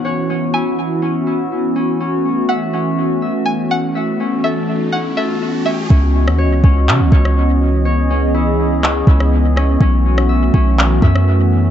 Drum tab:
CP |----------------|----------------|----------------|--------x-------|
SD |----------------|----------------|----------------|---r-------r----|
BD |----------------|----------------|----------------|o-----o---o-----|

CP |--------x-------|--------x-------|
SD |-----------r--r-|---r-------r----|
BD |----------o-----|o-----o---o-----|